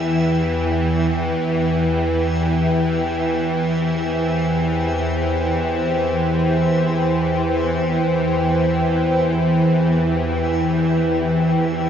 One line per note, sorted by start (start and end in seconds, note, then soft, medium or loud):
0.00 11.90 E2 medium
0.00 11.90 E3 medium
0.00 0.11 B4 medium
0.00 11.90 E5 medium
0.00 11.90 G5 medium
0.12 11.90 E3 medium
2.54 11.90 C5 medium
5.53 11.90 E5 medium